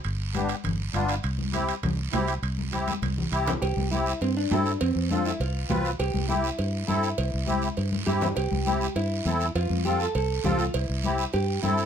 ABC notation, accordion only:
X:1
M:4/4
L:1/8
Q:1/4=202
K:C
V:1 name="Accordion"
z2 [B,DG] z3 [B,DF] z | z2 [CEG] z3 [CEG] z | z2 [CEG] z3 [CEG] z | z2 [CEG] z3 [CEA] z |
z2 [CFA] z3 [CFB] z | z2 [CEG] z3 [CEA] z | z2 [CEG] z3 [CEG] z | z2 [CEG] z3 [CEA] z |
z2 [CFA] z3 [CFA] z | z2 [CEG] z3 [CEA] z |]